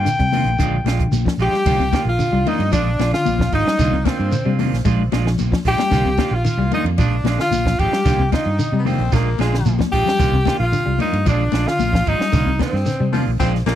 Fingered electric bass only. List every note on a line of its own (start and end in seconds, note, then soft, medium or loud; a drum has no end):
0.20 0.44 C3 medium
0.44 0.58 A#1 medium
0.59 0.84 A#1 loud
0.84 1.10 A#1 loud
1.11 1.25 A#1 loud
1.38 1.51 A#1 medium
1.52 muted fingered electric bass stroke soft
1.66 1.91 C2 loud
2.05 2.18 A#1 loud
2.32 2.44 C2 loud
2.59 2.71 G2 medium
2.72 2.97 A#1 loud
2.99 3.12 A#1 medium
3.26 3.51 A#1 medium
3.52 3.65 G#1 medium
3.67 muted fingered electric bass stroke soft
3.79 4.04 C2 loud
4.20 4.31 G2 loud
4.46 4.71 C3 medium
4.73 4.85 A#1 medium
4.85 5.10 A#1 loud
5.12 5.37 A#1 loud
5.39 5.51 A#1 loud
5.65 5.78 A#1 medium
5.79 muted fingered electric bass stroke soft
5.91 6.17 C2 loud
6.31 6.44 A#1 loud
6.57 6.70 C2 loud
6.84 6.97 F2 medium
6.98 7.23 A#1 loud
7.23 7.37 A#1 medium
7.51 7.77 A#1 medium
7.79 7.91 G#1 medium
7.91 muted fingered electric bass stroke soft
8.06 8.31 C2 loud
8.46 8.58 G2 medium
8.72 8.97 C3 medium
8.99 9.11 A#1 medium
9.13 9.38 A#1 loud
9.39 9.64 A#1 loud
9.66 9.78 A#1 loud
9.93 10.05 A#1 medium
10.07 muted fingered electric bass stroke soft
10.20 10.45 C2 medium
10.60 10.72 A#1 loud
10.86 10.99 C2 loud
11.13 11.25 G2 medium
11.27 11.51 A#1 loud
11.52 11.65 A#1 medium
11.79 12.04 A#1 medium
12.06 12.19 G#1 medium
12.19 muted fingered electric bass stroke soft
12.33 12.58 C2 loud
12.73 12.86 G2 loud
13.00 13.25 C3 medium
13.26 13.39 A#1 medium
13.40 13.65 A#1 loud
13.66 13.75 A#1 loud